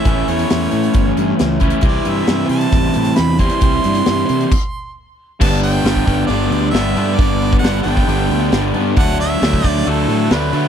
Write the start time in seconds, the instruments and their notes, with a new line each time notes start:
Already playing: harmonica E5
0.05 fingered electric bass A1, overdriven electric guitar A2 E3 A3 C#4 E4, kick, closed hi-hat
0.28 fingered electric bass E2, harmonica C#5, closed hi-hat
0.39 closed hi-hat
0.50 fingered electric bass E2, snare, closed hi-hat
0.71 fingered electric bass A2, closed hi-hat
0.84 closed hi-hat
0.94 fingered electric bass G1, kick, closed hi-hat
1.17 fingered electric bass G2, closed hi-hat
1.39 fingered electric bass C#2, snare, closed hi-hat
1.60 overdriven electric guitar A2 E3 A3 C#4 E4, kick, closed hi-hat
1.70 closed hi-hat
1.81 fingered electric bass C2, overdriven electric guitar C3 E3 G3 C4 E4, kick, closed hi-hat
1.88 harmonica D5
2.05 fingered electric bass G2, harmonica E5, closed hi-hat
2.27 fingered electric bass G2, snare, closed hi-hat
2.49 fingered electric bass C3, harmonica A5, closed hi-hat
2.61 closed hi-hat
2.72 fingered electric bass A1, kick, closed hi-hat
2.94 fingered electric bass A2, closed hi-hat
3.05 closed hi-hat
3.16 fingered electric bass E2, harmonica B5, snare, closed hi-hat
3.39 overdriven electric guitar C3 E3 G3 C4 E4, harmonica C6, kick, closed hi-hat
3.49 closed hi-hat
3.61 fingered electric bass C2, overdriven electric guitar C3 E3 G3 C4 E4, kick, closed hi-hat
3.84 fingered electric bass G2, closed hi-hat
3.95 closed hi-hat
4.06 fingered electric bass G2, snare, closed hi-hat
4.29 fingered electric bass C3, closed hi-hat
4.41 closed hi-hat
4.52 kick, crash
5.40 fingered electric bass G1, overdriven electric guitar G2 D3 G3 B3 D4, harmonica A5, kick, crash
5.63 harmonica G5, open hi-hat
5.84 fingered electric bass G1, overdriven electric guitar G2 D3 G3 B3 D4, snare, open hi-hat
5.96 kick
6.06 fingered electric bass G1, overdriven electric guitar G2 D3 G3 B3 D4, kick, open hi-hat
6.27 fingered electric bass G1, overdriven electric guitar G2 D3 G3 B3 D4, harmonica D5, open hi-hat
6.50 fingered electric bass D2, open hi-hat
6.70 fingered electric bass G1, overdriven electric guitar G2 D3 G3 B3, harmonica E5, open hi-hat
6.75 overdriven electric guitar D4, snare
6.96 overdriven electric guitar G2 D3 G3 B3 D4, fingered electric bass G2, open hi-hat
7.15 overdriven electric guitar G2 G3, harmonica D5, open hi-hat
7.19 fingered electric bass G1, overdriven electric guitar D3 B3 D4, kick
7.42 open hi-hat
7.53 kick
7.59 harmonica F#5
7.63 fingered electric bass G1, overdriven electric guitar G2 D3 G3 B3 D4, snare, open hi-hat
7.83 fingered electric bass G1, overdriven electric guitar G2 D3, harmonica G5
7.87 overdriven electric guitar G3 B3 D4, open hi-hat
7.97 kick, snare
8.08 fingered electric bass G1, overdriven electric guitar G2 D3 G3 B3 D4, open hi-hat
8.29 fingered electric bass D2, open hi-hat
8.52 fingered electric bass G1, overdriven electric guitar G2 D3 G3 B3 D4, snare, open hi-hat
8.73 fingered electric bass G2, overdriven electric guitar G2 D3 G3 B3 D4, open hi-hat
8.96 fingered electric bass D2, overdriven electric guitar D3 F#3 A3 D4, harmonica F#5, kick, open hi-hat
9.20 harmonica E5, open hi-hat
9.41 fingered electric bass D2, overdriven electric guitar D3 F#3 A3 D4, snare, open hi-hat
9.53 kick
9.63 fingered electric bass D2, overdriven electric guitar D3 F#3 A3 D4, harmonica D5, kick, open hi-hat
9.77 snare
9.86 fingered electric bass D2, overdriven electric guitar D3 F#3 A3 D4, harmonica A4, open hi-hat
10.08 fingered electric bass A2, open hi-hat
10.31 fingered electric bass D2, overdriven electric guitar D3 F#3 A3 D4, harmonica B4, snare, open hi-hat
10.53 fingered electric bass D3, overdriven electric guitar D3 F#3 A3 D4, open hi-hat